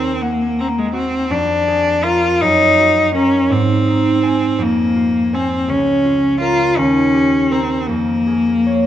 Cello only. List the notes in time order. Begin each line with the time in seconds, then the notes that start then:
Already playing: C4
0.22 A#3
0.61 C4
0.68 A#3
0.79 G#3
0.86 A#3
0.94 C4
1.31 D4
2.04 F4
2.41 D#4
3.15 C#4
3.52 C4
4.63 A#3
5.35 C4
5.70 C#4
6.41 F4
6.77 C#4
7.52 C4
7.87 A#3